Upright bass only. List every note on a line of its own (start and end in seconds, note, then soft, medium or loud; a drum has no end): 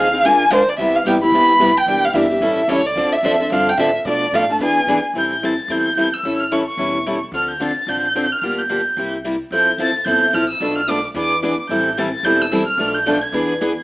0.00 0.22 D#2 medium
0.23 0.50 A#1 medium
0.50 0.77 D2 medium
0.78 1.05 C2 medium
1.05 1.31 A1 medium
1.32 1.59 G1 medium
1.59 1.86 F1 medium
1.86 2.13 E1 medium
2.14 2.40 G1 medium
2.41 2.67 A1 medium
2.68 2.95 C#2 medium
2.96 3.22 D2 medium
3.23 3.49 F2 medium
3.50 3.77 G2 loud
3.78 4.04 A2 medium
4.05 4.31 B2 medium
4.32 4.58 A2 medium
4.59 4.86 E2 medium
4.87 5.01 G#2 medium
5.03 muted upright bass stroke soft
5.13 5.58 A1 medium
5.68 6.12 E2 medium
6.23 6.67 A1 medium
6.77 7.22 E1 medium
7.32 7.76 D2 medium
7.87 8.31 A1 medium
8.42 8.86 G1 medium
8.97 9.41 C2 medium
9.51 9.73 F2 medium
9.78 10.02 F1 medium
10.06 10.29 G1 medium
10.33 10.56 A1 medium
10.60 11.04 B1 medium
11.14 11.58 E2 medium
11.69 12.13 A1 medium
12.23 12.67 E1 medium
12.78 13.22 B1 medium
13.32 13.77 E2 medium